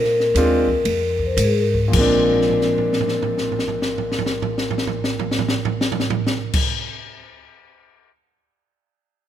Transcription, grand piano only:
0, 0, Header, 1, 2, 480
1, 0, Start_track
1, 0, Tempo, 483092
1, 839, Tempo, 545455
1, 1799, Time_signature, 4, 2, 24, 8
1, 1799, Tempo, 589391
1, 7782, End_track
2, 0, Start_track
2, 0, Title_t, "Grand piano"
2, 0, Program_c, 0, 0
2, 368, Note_on_c, 0, 56, 68
2, 369, Note_on_c, 0, 62, 64
2, 370, Note_on_c, 0, 60, 63
2, 372, Note_on_c, 0, 65, 76
2, 649, Note_off_c, 0, 56, 0
2, 650, Note_off_c, 0, 60, 0
2, 650, Note_off_c, 0, 62, 0
2, 651, Note_off_c, 0, 65, 0
2, 1750, Note_on_c, 0, 46, 65
2, 1770, Note_on_c, 0, 53, 64
2, 1800, Note_on_c, 0, 56, 59
2, 1827, Note_on_c, 0, 60, 66
2, 1848, Note_on_c, 0, 62, 77
2, 5598, Note_off_c, 0, 46, 0
2, 5608, Note_off_c, 0, 53, 0
2, 5621, Note_off_c, 0, 56, 0
2, 5635, Note_off_c, 0, 60, 0
2, 5645, Note_off_c, 0, 62, 0
2, 7782, End_track
0, 0, End_of_file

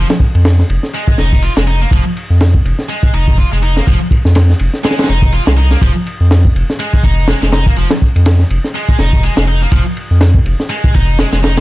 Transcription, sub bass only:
0, 0, Header, 1, 2, 480
1, 0, Start_track
1, 0, Key_signature, -4, "minor"
1, 0, Tempo, 487805
1, 1887, Time_signature, 4, 2, 24, 8
1, 11417, End_track
2, 0, Start_track
2, 0, Title_t, "Sub bass"
2, 0, Program_c, 0, 38
2, 340, Note_on_c, 0, 41, 81
2, 625, Note_off_c, 0, 41, 0
2, 685, Note_on_c, 0, 29, 86
2, 773, Note_off_c, 0, 29, 0
2, 1166, Note_on_c, 0, 29, 90
2, 1464, Note_off_c, 0, 29, 0
2, 1542, Note_on_c, 0, 29, 78
2, 1826, Note_off_c, 0, 29, 0
2, 1882, Note_on_c, 0, 29, 99
2, 1971, Note_off_c, 0, 29, 0
2, 2264, Note_on_c, 0, 41, 85
2, 2547, Note_off_c, 0, 41, 0
2, 2607, Note_on_c, 0, 29, 91
2, 2694, Note_off_c, 0, 29, 0
2, 3088, Note_on_c, 0, 29, 88
2, 3384, Note_off_c, 0, 29, 0
2, 3465, Note_on_c, 0, 29, 79
2, 3748, Note_off_c, 0, 29, 0
2, 3810, Note_on_c, 0, 29, 98
2, 3895, Note_off_c, 0, 29, 0
2, 4182, Note_on_c, 0, 41, 87
2, 4466, Note_off_c, 0, 41, 0
2, 4528, Note_on_c, 0, 29, 88
2, 4614, Note_off_c, 0, 29, 0
2, 5011, Note_on_c, 0, 29, 77
2, 5306, Note_off_c, 0, 29, 0
2, 5384, Note_on_c, 0, 36, 83
2, 5667, Note_off_c, 0, 36, 0
2, 5725, Note_on_c, 0, 29, 97
2, 5812, Note_off_c, 0, 29, 0
2, 6104, Note_on_c, 0, 41, 84
2, 6387, Note_off_c, 0, 41, 0
2, 6448, Note_on_c, 0, 29, 88
2, 6534, Note_off_c, 0, 29, 0
2, 6924, Note_on_c, 0, 29, 91
2, 7222, Note_off_c, 0, 29, 0
2, 7303, Note_on_c, 0, 29, 78
2, 7587, Note_off_c, 0, 29, 0
2, 7650, Note_on_c, 0, 29, 95
2, 7736, Note_off_c, 0, 29, 0
2, 8024, Note_on_c, 0, 41, 84
2, 8307, Note_off_c, 0, 41, 0
2, 8367, Note_on_c, 0, 29, 87
2, 8454, Note_off_c, 0, 29, 0
2, 8848, Note_on_c, 0, 29, 92
2, 9144, Note_off_c, 0, 29, 0
2, 9223, Note_on_c, 0, 29, 81
2, 9507, Note_off_c, 0, 29, 0
2, 9564, Note_on_c, 0, 29, 100
2, 9652, Note_off_c, 0, 29, 0
2, 9944, Note_on_c, 0, 41, 86
2, 10227, Note_off_c, 0, 41, 0
2, 10289, Note_on_c, 0, 29, 87
2, 10375, Note_off_c, 0, 29, 0
2, 10774, Note_on_c, 0, 29, 89
2, 11067, Note_off_c, 0, 29, 0
2, 11143, Note_on_c, 0, 29, 76
2, 11417, Note_off_c, 0, 29, 0
2, 11417, End_track
0, 0, End_of_file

